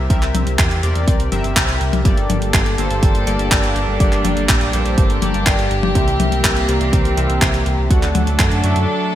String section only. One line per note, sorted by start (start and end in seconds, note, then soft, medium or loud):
2.05 5.91 G3 medium
2.05 5.91 A#3 medium
2.05 5.91 D4 medium
2.05 3.98 A4 medium
4.00 7.87 G4 medium
5.95 7.88 E3 medium
5.95 7.88 A#3 medium
5.95 7.88 C4 medium
7.90 9.15 F#3 medium
7.90 9.15 A3 medium
7.90 9.15 D4 medium
7.90 9.15 A4 medium